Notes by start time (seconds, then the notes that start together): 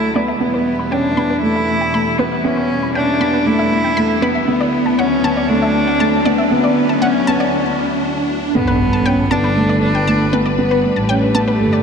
Already playing: D2 D3 F#3 E4, riser
0.14 A3 B3 D5
0.28 E5
0.40 E2 B2 G3 B3
0.54 B4
0.79 B5
0.91 C#4 D4 G5
1.17 B3 B5
1.30 B4
1.42 A3 E4
1.56 E5
1.81 G5
1.94 A3 B5
2.18 B3 B4
2.32 E5
2.44 B3 C#4
2.57 B4
2.83 B5
2.95 C#4 D4 G5
3.21 B3 B5
3.34 B4
3.46 A3 E4
3.59 E5
3.84 G5
3.97 A3 B5
4.22 B3 B4
4.35 E5
4.48 D2 D3 F#3 B3
4.61 D5
4.86 A5
4.98 C#4 F#5
5.24 B3 A5
5.37 D5
5.49 A3 D4
5.62 E5
5.87 F#5
6.00 A3 A5
6.25 A3 B3 D5
6.38 E5
6.51 B3
6.64 D5
6.89 A5
7.02 C#4 F#5
7.27 B3 A5
7.40 D5
8.55 G1 G3 B3 D4 A4 B4, impact
8.67 B4
8.93 A5
9.06 C#4 G5
9.31 B3 D4 A5
9.44 B4
9.57 A3
9.69 D5
9.82 D4
9.95 G5
10.07 A3 A5
10.32 A3 B3 B4
10.46 D5
10.58 B3 G4
10.71 B4
10.84 A3
10.96 A1 A5
11.09 C#4 G5
11.34 B3 A5
11.48 B4
11.60 G1 A3
11.73 D5